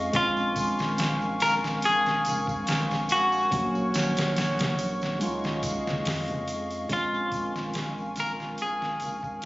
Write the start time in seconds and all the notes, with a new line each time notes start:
Already playing: F2 G#3 C#4 D#4 F4 G#4 D#5 F5 C#6
0.13 A#1 G#3 C4 C#4 F4 A#4 G#5, kick, closed hi-hat, tambourine
0.17 F5
0.37 tambourine
0.56 kick, closed hi-hat, tambourine
0.79 snare, tambourine
0.98 snare, closed hi-hat, tambourine
1.22 tambourine
1.40 A#4, snare, closed hi-hat, tambourine
1.64 snare, tambourine
1.82 A#1 G#4, closed hi-hat, tambourine
2.06 snare, tambourine
2.25 A#1, closed hi-hat, tambourine, low conga
2.47 kick, tambourine
2.67 snare, closed hi-hat, tambourine
2.91 snare, tambourine
3.09 F#4, closed hi-hat, tambourine
3.32 tambourine
3.50 A#1 F#3 A#3 C#4 A#4 C#5 F#5, kick, closed hi-hat, tambourine
3.55 F#4
3.75 tambourine
3.94 snare, closed hi-hat, tambourine
4.17 snare, closed hi-hat, tambourine
4.36 snare, closed hi-hat, tambourine
4.59 snare, closed hi-hat, tambourine, low conga
4.78 closed hi-hat, tambourine
5.02 snare, tambourine
5.19 C#2 G#3 C#4 D#4 F4 G#4 D#5 F5, closed hi-hat, tambourine
5.44 snare, tambourine
5.63 kick, closed hi-hat, tambourine
5.87 snare, tambourine, low conga
6.05 F2, snare, open hi-hat, tambourine
6.28 closed hi-hat, tambourine, low conga
6.48 closed hi-hat, tambourine
6.71 closed hi-hat, tambourine
6.89 A#1 G#3 C4 C#4 A#4 F5 G#5, kick, closed hi-hat, tambourine
6.93 F4
7.14 tambourine
7.32 kick, closed hi-hat, tambourine
7.56 snare, tambourine
7.74 snare, closed hi-hat, tambourine
7.98 tambourine
8.16 snare, closed hi-hat, tambourine
8.20 A#4
8.40 snare, tambourine
8.58 A#1, closed hi-hat, tambourine
8.62 G#4
8.82 snare, tambourine
9.00 A#1, closed hi-hat, tambourine, low conga
9.23 kick, tambourine
9.42 closed hi-hat